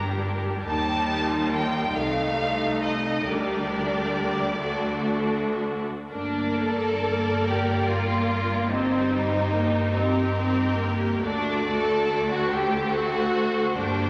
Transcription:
Already playing: G1 G2 G3 D4 G4 A#4
0.69 D#2 G3 D#4 G4 A#4 A5
1.31 F4
1.55 G5
1.96 C2 A3 D#4 A4 F5
2.83 D#5
3.26 D2 G3 D4 G4 A#4 D5
4.63 A3 D4 F#4 A4
6.10 G1 G2 A#3 D4 A#4 D5
6.59 A4
7.48 G4
7.88 F4
8.70 C4 D#4 G4 C5
9.12 G3
9.53 A#3
9.94 C4 G4 A#4
10.34 C4
10.79 A#3
11.22 D2 A3 D4 F#4 D5
11.69 A4
12.32 F#4
12.50 A3 G4 A4 C5
12.92 F#4
13.75 G1 G2 A#3 D4 G4

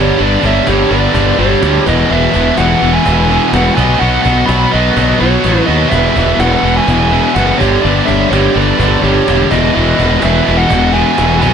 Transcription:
Already playing: G1 G2 D3 G3 D4 G4 A4
0.00 C#5
0.17 G1 G2 D3 G3 B4, cajon slap
0.23 D5
0.43 G1 G2 D3 G3 C#5 E5, cajon bass
0.66 G1 G2 D3 G3 G4 C#5, cajon slap
0.88 G1 G2 G3 B4 D5, cajon slap
0.92 G2 D3 G3
1.14 G1 G2 D3 G3, cajon bass
1.37 G1 G2 D3 G3 G4 C#5, cajon slap
1.62 D2 G2 D3 G3, cajon slap
1.86 E1 E2 B2 E3 B3 F#4 B4 D#5, cajon bass
2.10 E1 E2 B2 E3 B4 E5
2.34 E1 E2 B2 E3, cajon bass
2.57 E1 E2 B2 E3 B4 F#5, cajon slap
2.82 E1 E2 B2 E3, cajon slap
2.94 E5 G#5
3.05 E1 E2 B2 E3, cajon bass
3.30 E2 B2 E3, cajon slap
3.52 E1 E2 B2 E3 F#5, cajon slap
3.57 B4
3.75 B1 B2 F#4 C#5 D#5 G#5, cajon bass
3.79 F#3 B3
4.00 B1 B2 F#3 B3 D#5 F#5, cajon slap
4.22 B1 B2 D#5 F#5, cajon bass
4.27 F#3 B3
4.46 B1 B2 B5, cajon slap
4.51 F#3 B3 F#5
4.71 B1 B2 F#3 B3 D#5, cajon slap
4.75 B4
4.97 B1 B2 F#3 B3, cajon bass
5.19 B1 B2 F#3 B3 F#4 C#5, cajon slap
5.44 A1 B2 F#3 B3, cajon slap
5.66 D#2 B2 F#3 B4 D#5, cajon slap
5.71 B3
5.90 E1 E2 B2 E3 E5, cajon bass
5.94 B4
6.16 E1 E2 B2 E3, cajon bass
6.38 E1 E2 B2 B4 F#5, cajon slap
6.43 E3
6.62 E1 E2 B2 E3, cajon slap
6.77 E5 G#5
6.87 E1 E2 B2 E3, cajon bass
7.13 E2 B2 E3, cajon slap
7.35 F#1 E2 B2 E3 B4 F#5, cajon slap
7.58 G1 G2 D3 G3 D4 G4 A4 C#5, cajon bass
7.62 G3
7.82 G1 G2 D3 G3 B4 D5, cajon slap
8.06 G1 G2 D3 G3 C#5 E5, cajon bass
8.30 G1 G2 D3 G3 G4 C#5, cajon slap
8.55 G1 G2 D3 G3 B4 D5, cajon slap
8.79 G1 G2 D3 G3, cajon bass
9.02 G1 G2 D3 G3 G4 C#5, cajon slap
9.27 E1 G2 D3 G3, cajon slap
9.50 E1 E2 B2 E3 B3 F#4 B4 D#5, cajon bass
9.73 E1 E2 B2 E3
9.98 E1 E2 B2 E3, cajon bass
10.21 E1 E2 B2 E3 B4 E5, cajon slap
10.45 E1 E2 B2 E3, cajon slap
10.57 D#5 F#5
10.70 E1 E2 B2 E3, cajon bass
10.93 E2 B2 E3 E5 G#5, cajon slap
11.18 E1 E2 B2 E3, cajon slap
11.41 B1 B2 F#3 B3 C#5 D#5 G#5, cajon bass

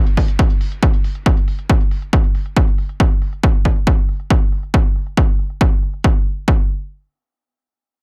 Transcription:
0.07 closed hi-hat
0.17 kick, open hi-hat
0.28 closed hi-hat
0.39 kick, closed hi-hat
0.50 closed hi-hat
0.61 open hi-hat
0.72 closed hi-hat
0.83 kick, closed hi-hat
0.93 closed hi-hat
1.04 open hi-hat
1.15 closed hi-hat
1.26 kick, closed hi-hat
1.37 closed hi-hat
1.48 open hi-hat
1.59 closed hi-hat
1.70 kick, closed hi-hat
1.80 closed hi-hat
1.91 open hi-hat
2.02 closed hi-hat
2.13 kick, closed hi-hat
2.24 closed hi-hat
2.35 open hi-hat
2.46 closed hi-hat
2.56 kick
2.67 closed hi-hat
2.78 open hi-hat
2.89 closed hi-hat
3.00 kick
3.11 closed hi-hat
3.22 open hi-hat
3.33 closed hi-hat
3.43 kick
3.54 closed hi-hat
3.65 kick
3.76 closed hi-hat
3.87 kick
3.98 closed hi-hat
4.09 open hi-hat
4.20 closed hi-hat
4.30 kick
4.52 open hi-hat
4.63 closed hi-hat
4.74 kick
4.96 open hi-hat
5.07 closed hi-hat
5.17 kick
5.39 open hi-hat
5.50 closed hi-hat
5.61 kick
5.83 open hi-hat
5.93 closed hi-hat
6.04 kick
6.48 kick

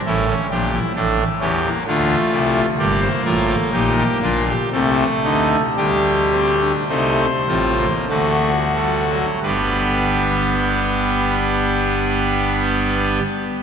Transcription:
0.06 A1 A2 C#4 E4 A4
0.28 C#4
0.50 A#1 A#2 D4 G4
0.74 E4
0.96 A1 A2 D4 A4
1.40 E2 E3 C#4 G4
1.64 A#3
1.87 D2 D3 A3 D4 F4
2.32 C2 C3 E4
2.79 G1 G2 A#3 G4 D5
3.01 C5
3.25 A1 A2 F4 A#4
3.50 A4
3.73 A#1 A#2 D#4 G4
3.98 G4
4.22 A#1 A#2 D4 F4
4.49 G4
4.72 C2 C3 A3 C4 A4
5.24 D2 D3 D#4
5.77 D2 D3 G3 D4 G4
6.32 C4
6.60 D4
6.89 C2 C3 A3 D#4 C5
7.48 A1 A2 C4 F4
7.78 A#3
8.09 D2 D3 A3 F#4 A4
8.74 G3 A4
9.09 F#3
9.43 G1 G2 G3 B3 D4 G4 B4

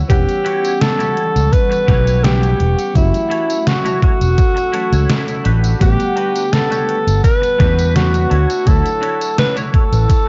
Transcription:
Already playing: D3 F#3 A3 E4 C#5 F#5
0.08 E1 E3 G3 B3 C#4 G4 F#5 C#6, kick, closed hi-hat, tambourine
0.29 closed hi-hat, tambourine
0.45 E4 F#4 G4 C#5, closed hi-hat
0.65 closed hi-hat, tambourine
0.81 A4, snare, closed hi-hat, tambourine
0.99 E4 F#4 G4 C#5, closed hi-hat, tambourine
1.17 closed hi-hat
1.36 C#2, closed hi-hat, tambourine
1.52 B4, muted clean electric guitar stroke, kick, closed hi-hat, tambourine
1.71 muted clean electric guitar stroke, closed hi-hat, tambourine
1.88 B1 E4 F#4 G4 C#5, kick, snare, closed hi-hat
2.07 closed hi-hat, tambourine
2.23 E3 G3 B3 C#4 G4, snare, closed hi-hat, tambourine
2.43 closed hi-hat, tambourine
2.60 E1, closed hi-hat
2.79 closed hi-hat, tambourine
2.94 F#1 E3 F#3 A3 C#4 E4 F#4 A4 E6, kick, closed hi-hat, tambourine
3.14 closed hi-hat, tambourine
3.30 E4 F#4 A4 C#5, closed hi-hat
3.50 closed hi-hat, tambourine
3.67 F#4, snare, closed hi-hat, tambourine
3.85 E4 F#4 A4 C#5, closed hi-hat, tambourine
4.02 F#4, kick, closed hi-hat
4.21 E1, closed hi-hat, tambourine
4.37 muted clean electric guitar stroke, kick, closed hi-hat, tambourine
4.56 muted clean electric guitar stroke, closed hi-hat, tambourine
4.73 E3 F#3 A3 C#4 E4 F#4 A4 C#5, closed hi-hat
4.92 C#2, closed hi-hat, tambourine
5.10 snare, closed hi-hat, tambourine
5.28 closed hi-hat, tambourine
5.44 A1 D4 F#4 G4 B4, closed hi-hat
5.64 closed hi-hat, tambourine
5.79 A1 D3 G3 A3 B3 G4 F#5, kick, closed hi-hat, tambourine
6.00 closed hi-hat, tambourine
6.16 D4 F#4 G4 B4, closed hi-hat
6.36 closed hi-hat, tambourine
6.53 A4, snare, closed hi-hat, tambourine
6.71 D4 F#4 G4 C#5, closed hi-hat, tambourine
6.89 closed hi-hat
7.07 G1, closed hi-hat, tambourine
7.23 B4, muted clean electric guitar stroke, kick, closed hi-hat, tambourine
7.42 muted clean electric guitar stroke, closed hi-hat, tambourine
7.59 E2 D4 F#4 G4 B4, kick, snare, closed hi-hat
7.79 closed hi-hat, tambourine
7.95 D3 A3 F#4 C#5 F#5, snare, closed hi-hat, tambourine
8.14 closed hi-hat, tambourine
8.30 D2 D4 E4 F#4 C#5 C#6 E6, closed hi-hat
8.50 closed hi-hat, tambourine
8.65 D2 D3 F#3 A3 E4 A4 C#5, kick, closed hi-hat, tambourine
8.86 closed hi-hat, tambourine
9.01 D4 E4 F#4 C#5, closed hi-hat
9.21 closed hi-hat, tambourine
9.38 B4, snare, closed hi-hat, tambourine
9.56 D4 E4 F#4 C#5, closed hi-hat, tambourine
9.74 A4, kick, closed hi-hat
9.92 A1, closed hi-hat, tambourine
10.08 muted clean electric guitar stroke, kick, closed hi-hat, tambourine

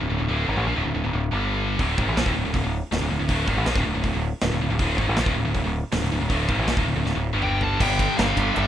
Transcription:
0.00 D1 D2 A2
0.09 D1 D2 A2
0.18 D1 D2 A2
0.28 D1 D2 A2 D3
0.47 G#1 G#2 D#3
0.57 A1 A2 E3
0.66 A#1 A#2 F3
0.75 D1 D2 A2
0.84 D1 D2 A2
0.94 D1 D2 A2
1.04 D1 D2 A2
1.13 D1 D2 A2
1.32 G1 G2 D3 G3
1.79 D1 D2 A2 D3, kick, open hi-hat
1.97 G#1 G#2 D#3, kick
2.06 A1 A2 E3
2.15 A#1 A#2 F3, snare, open hi-hat
2.24 D1 D2 A2, kick
2.35 D1 D2 A2
2.45 D1 D2 A2
2.54 D1 D2 A2, kick, open hi-hat
2.64 D1 D2 A2
2.92 D1 D2 A2, snare, open hi-hat
3.01 D1 D2 A2
3.11 D1 D2 A2
3.20 D1 D2 A2
3.29 D1 D2 A2 D3, kick, open hi-hat
3.47 G#1 G#2 D#3, kick
3.56 A1 A2 E3
3.66 A#1 A#2 F3, snare, open hi-hat
3.75 D1 D2 A2, kick, snare
3.85 D1 D2 A2
3.94 D1 D2 A2
4.03 D1 D2 A2, kick, open hi-hat
4.13 D1 D2 A2
4.41 D1 D2 A2, snare, open hi-hat
4.51 D1 D2 A2, snare
4.61 D1 D2 A2
4.70 D1 D2 A2
4.79 D1 D2 A2 D3, kick, open hi-hat
4.98 G#1 G#2 D#3, kick
5.07 A1 A2 E3
5.16 A#1 A#2 F3, snare, open hi-hat
5.26 D1 D2 A2, kick, snare
5.36 D1 D2 A2
5.45 D1 D2 A2
5.54 D1 D2 A2, kick, open hi-hat
5.64 D1 D2 A2
5.92 D1 D2 A2, snare, open hi-hat
6.02 D1 D2 A2, snare
6.12 D1 D2 A2
6.20 D1 D2 A2
6.29 D1 D2 A2 D3, kick, open hi-hat
6.48 G#1 G#2 D#3, kick
6.58 A1 A2 E3
6.67 A#1 A#2 F3, snare, open hi-hat
6.77 D1 D2 A2, kick
6.86 D1 D2 A2
6.95 D1 D2 A2
7.05 D1 D2 A2, snare
7.15 D1 D2 A2
7.33 G1 G2 D3 G3
7.42 G5, mid tom
7.61 A5, floor tom
7.80 G1 G2 D3 G3 G5, kick, crash
7.99 kick, ride
8.17 G1 G2 D3 G3 F5, snare, ride
8.36 G1 G2 D3 G3, kick, ride
8.54 G1 G2 D3 G3 E5, ride

